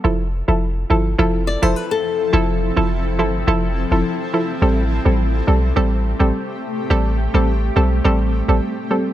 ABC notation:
X:1
M:4/4
L:1/16
Q:1/4=105
K:Flyd
V:1 name="Nylon-string guitar"
z8 z2 d c B A3- | A3 z12 z | z16 | z16 |]
V:2 name="Ambient pad"
[F,CEA]16- | [F,CEA]16 | [A,G]16- | [A,G]16 |]
V:3 name="Synth pluck"
[F,EA] z2 [F,EA] z2 [F,EA] z [F,EA]3 [F,EA] z4 | [F,EA] z2 [F,EA] z2 [F,EA] z [F,EA]3 [F,EA] z2 [F,EA] z | [G,CA] z2 [G,CA] z2 [G,CA] z [G,CA]3 [G,CA] z4 | [G,CA] z2 [G,CA] z2 [G,CA] z [G,CA]3 [G,CA] z2 [G,CA] z |]
V:4 name="808-style bass" clef=bass
F,,,3 F,,,3 G,,,2 F,,,3 F,,, z4 | F,,,3 F,,,3 G,,,2 F,,,3 F,,, z4 | A,,,3 A,,,3 B,,,2 A,,,3 A,,, z4 | A,,,3 A,,,3 B,,,2 A,,,3 A,,, z4 |]